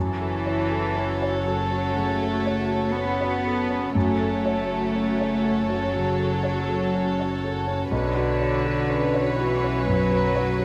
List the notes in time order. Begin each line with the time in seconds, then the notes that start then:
Already playing: F#1 F#2 E3 F#4 A4 C#5
0.21 A4
0.46 C#5
0.72 A4
0.97 C#4
1.22 C#5
1.47 F#3 A4
1.72 C#4
1.97 C#3 A3
2.20 A4
2.46 C#5
2.70 A4
2.95 B3 C#4
3.21 C#5
3.46 A4
3.71 C#4
3.94 F#1 F#2 A3 F#4 A4 C#5
4.21 A4
4.46 C#5
4.71 A4
4.96 C#4
5.20 C#5
5.45 A4
5.69 C#4
5.94 C#3 F#3
6.20 A4
6.43 C#5
6.69 A4
6.95 C#4
7.20 C#5
7.44 A4
7.68 C#4
7.91 B1 D3 F#4 B4 C#5
8.17 F#4
8.40 C#5
8.66 F#4
8.90 C#4
9.14 C#5
9.38 E3 F#4
9.64 C#4
9.88 F#2 F#3
10.11 F#4
10.35 C#5
10.59 F#4